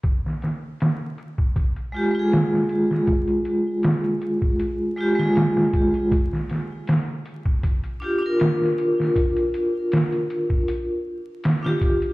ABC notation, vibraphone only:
X:1
M:4/4
L:1/16
Q:"Swing 16ths" 1/4=79
K:Fdor
V:1 name="Vibraphone"
z8 z2 [A,FG] [A,FA]4- [A,FA]- | [A,FA]8- [A,FA]2 [A,FG] [A,FA]4- [A,FA] | z8 z2 [DFG] [DFB]4- [DFB]- | [DFB]8- [DFB]2 z3 [DFG]3 |]